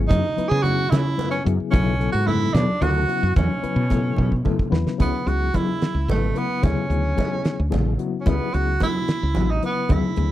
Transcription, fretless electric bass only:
0.10 F#2
0.38 muted fretless electric bass stroke
0.51 C#3
0.92 C#3
1.46 F#2
1.60 muted fretless electric bass stroke
1.73 B1
2.14 G#2
2.54 B2
2.82 D2
3.23 F#2
3.36 E2
3.64 muted fretless electric bass stroke
3.76 B2
4.18 B2
4.72 E2
4.87 muted fretless electric bass stroke
5.00 C#2
5.27 C#2
5.95 C#2
6.08 G#1
6.63 D2
6.90 D2
7.60 D2
7.73 A1
8.26 C#2
8.54 C#2
9.23 C#2
9.36 A1
9.90 D2
10.17 D2

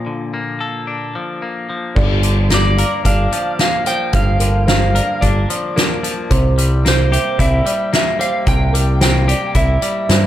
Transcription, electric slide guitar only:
2.54 D5
3.06 F5
3.61 F5
3.87 G5
4.15 F5
4.69 F5
5.21 D5
6.88 C5
7.41 E5
7.95 E5
8.21 F5
8.48 G5
9.03 G5
9.57 E5

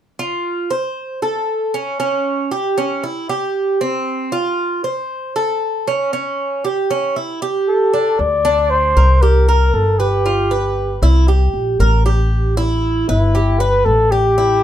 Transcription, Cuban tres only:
0.19 F4
0.70 C5
1.22 A4
1.74 C#4
2.00 C#4
2.51 G4
2.78 C#4
3.04 E4
3.29 G4
3.81 C4
4.32 F4
4.84 C5
5.36 A4
5.88 C#4
6.13 C#4
6.64 G4
6.91 C#4
7.16 E4
7.42 G4
7.94 D4
8.45 D4
8.97 A#4
9.23 G4
9.49 A#4
10.00 B4
10.26 F4
10.51 B4
11.03 E4
11.28 G4
11.80 A#4
12.06 G4
12.57 E4
13.09 B4
13.35 G4
13.60 B4
14.12 G4
14.38 E4

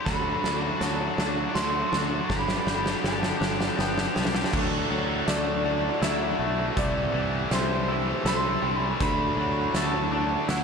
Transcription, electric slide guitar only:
0.05 B5
0.80 A5
1.54 C6
2.29 B5
3.04 A5
3.79 G5
5.29 D5
6.03 E5
6.78 D5
7.53 C5
8.27 C6
8.75 B5
9.02 B5
9.77 A5
10.50 F#5

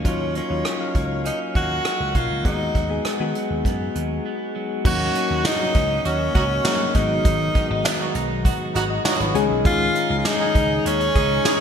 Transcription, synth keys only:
0.05 F#3 C#4 D#4 F4
0.50 F#3 C#4 D#4 F4
0.79 F#3 C#4 D#4 F5
2.45 G#3 B3 D#4 F#4
2.89 G#3 B3 D#4 G#4
3.20 G#3 B3 D#4 F#4
4.85 F#3 A#3 C#4 D#4 F#4
6.65 F#3 A#3 C#4 D#4 F#4
6.95 F#3 G#3 B3 D#4 F#4
8.90 F#4 D#5
9.05 F4 C#5
9.20 D#4 B4
9.34 D#3 G#3 C#4 D#4 G#4
11.45 D#3 G#3 C#4 D#4 G#4

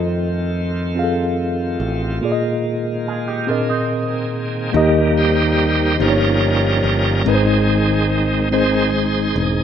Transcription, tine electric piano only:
Already playing: C4 F4 A4 D#5
0.95 C4 F4 G#4 F5
1.04 A4
2.21 A#2 A#3 F4 G#4 D5
2.32 D#5
3.47 A#2 C4 G#4 A#4
3.51 D#5
4.72 D#3 A#3 D#4 G4
4.77 D#5
5.99 G2 A#3 D#4 G4 C5
6.09 C#5
7.25 G#2 G#3 C4 D#4 B4
7.35 C5
8.50 G#3 C4 D#4 C5

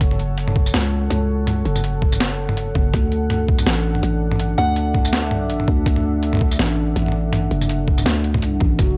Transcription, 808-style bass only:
0.01 F#1
0.74 C#2
1.10 C#2
1.65 F#1
2.75 F#1
2.94 D2
3.67 A1
4.03 A1
4.58 D2
5.68 D2
5.86 D2
6.59 A1
6.96 A1
7.51 F#1
8.06 D2
8.61 A1
8.79 F#1

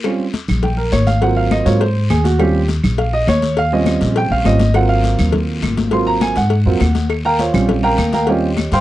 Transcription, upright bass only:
0.49 A#1
0.93 G#1
1.66 G#2
2.10 D#2
2.84 A#1
3.27 D#2
4.01 A#1
4.30 A#1
4.46 G#1
5.19 D#2
5.63 G#1
6.37 G#2
6.66 F2
6.81 D#2
7.54 A#1
7.98 D#2
8.72 G2

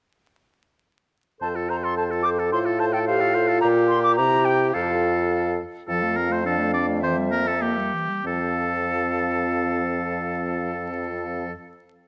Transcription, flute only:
1.42 A5
1.70 A#5
1.84 C6
1.97 A5
2.23 D6
2.53 C6
2.79 A5
2.93 G5
3.05 F5
3.61 A#5
3.88 C6
4.03 D6
4.16 A#5
4.45 G5
4.72 F5
5.89 F5
7.01 E5
8.25 F5

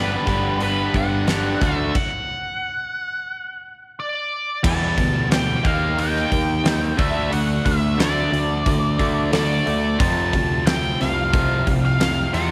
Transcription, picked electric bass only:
Already playing: G1
0.27 G1
0.94 G1
1.61 D2
4.64 E2
4.98 D2
5.65 D#2
6.32 D#2
6.99 D2
7.66 D2
8.32 D2
8.67 D2
9.00 D2
9.67 D2
10.01 F2
10.33 D2
11.02 C2
11.67 C2
12.34 E2

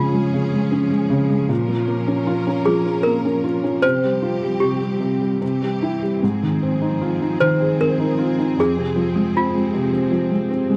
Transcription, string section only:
Already playing: F3 C#4 G#4
1.49 C#4 A#4
3.83 C4 G4
5.42 E3 C4 G4
6.23 F3 G#4
8.59 F3

